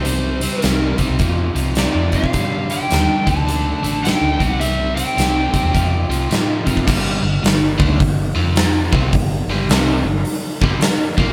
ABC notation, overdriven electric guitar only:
X:1
M:4/4
L:1/8
Q:"Swing" 1/4=106
K:Fmix
V:1 name="Overdriven electric guitar" clef=bass
[C,G,C] [C,G,C] [C,G,C] [C,G,C] [F,,C,F,] [F,,C,F,] [F,,C,F,] [F,,C,F,] | [G,,D,G,] [G,,D,G,] [G,,D,G,] [D,A,D] [D,A,D] [D,A,D] [D,A,D] [C,G,C] | [C,G,C] [C,G,C] [C,G,C] [C,G,C] [F,,C,F,] [F,,C,F,] [F,,C,F,] [F,,C,F,] | [G,,D,G,] [G,,D,] [G,,D,] [D,A,D] [G,,D,] [F,CF]2 [C,G,C] |
[G,,D,] [G,,D,G,] [C,G,C] [G,,D,] z [G,,D,G,] z [B,,F,B,] |]